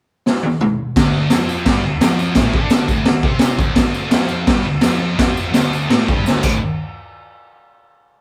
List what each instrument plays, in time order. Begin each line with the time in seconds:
0.26 snare
0.43 high tom
0.61 mid tom
0.96 distorted electric guitar D2 D3, kick, snare, tambourine, crash
1.30 distorted electric guitar F2 F3, snare, tambourine, crash
1.49 tambourine
1.66 distorted electric guitar G2 G3, kick, snare, crash
1.84 distorted electric guitar D2
2.01 distorted electric guitar F2 F3, snare, tambourine, crash
2.19 tambourine
2.35 distorted electric guitar A2 A3, kick, snare, tambourine, crash
2.54 distorted electric guitar D3 D4, kick
2.70 snare, tambourine, crash
2.87 distorted electric guitar D2 D3, kick, tambourine
3.05 muted distorted electric guitar stroke, snare, crash
3.23 distorted electric guitar C3 C4, kick
3.39 snare, tambourine, crash
3.58 distorted electric guitar D2 D3, kick, tambourine
3.73 distorted electric guitar D2 D3, kick, snare, tambourine, crash
3.94 tambourine
4.09 distorted electric guitar F2 F3, snare, tambourine, crash
4.29 tambourine
4.47 distorted electric guitar G2 G3, kick, snare, crash
4.66 distorted electric guitar D2
4.81 distorted electric guitar F2 F3, snare, tambourine, crash
5.17 distorted electric guitar F2 F3, kick, snare, tambourine, crash
5.37 tambourine
5.52 distorted electric guitar D2 D3, snare, tambourine, crash
5.73 tambourine
5.89 distorted electric guitar A2 A3, snare, crash
6.07 distorted electric guitar G2 G3, kick, tambourine
6.25 distorted electric guitar D2 D3, snare, tambourine
6.42 distorted electric guitar D2 A2 D3, kick, crash, tambourine